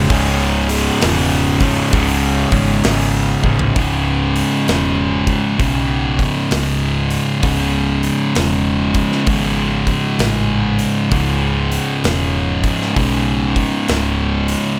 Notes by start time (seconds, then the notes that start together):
Already playing: C#3
0.09 C#1 C#2 G#2 C#3, kick, open hi-hat
0.68 C#2 G#2 C#3, open hi-hat
1.01 E1 C#2 G#2 C#3, snare, open hi-hat
1.60 C#2 G#2 C#3, kick, snare, open hi-hat
1.91 C#1 C#2 G#2 C#3, kick, open hi-hat
2.51 G#1 C#2 G#2 C#3, kick, open hi-hat
2.84 G#1 C#2 G#2 C#3, snare, open hi-hat
3.43 A1 C#2 G#2 C#3, kick
3.59 floor tom
3.74 C#1 C#2 G#2 C#3, kick, open hi-hat
4.36 open hi-hat
4.68 E1, snare, open hi-hat
5.27 kick, open hi-hat
5.58 B1 C#2 G#2 C#3, kick, open hi-hat
6.19 kick, open hi-hat
6.51 C#1, snare, open hi-hat
7.10 open hi-hat
7.40 C#1 C#2 G#2 C#3, kick, open hi-hat
8.03 open hi-hat
8.35 E1, snare, open hi-hat
8.94 kick, open hi-hat
9.12 snare
9.26 G#1 C#2 G#2 C#3, kick, open hi-hat
9.87 kick, open hi-hat
10.19 A1, snare, open hi-hat
10.79 open hi-hat
11.10 C#1 C#2 G#2 C#3, kick, open hi-hat
11.72 open hi-hat
12.04 E1, snare, open hi-hat
12.64 kick, open hi-hat
12.82 snare
12.95 B1 C#2 G#2 C#3, kick, open hi-hat
13.56 kick, open hi-hat
13.88 C#1, snare, open hi-hat
14.48 open hi-hat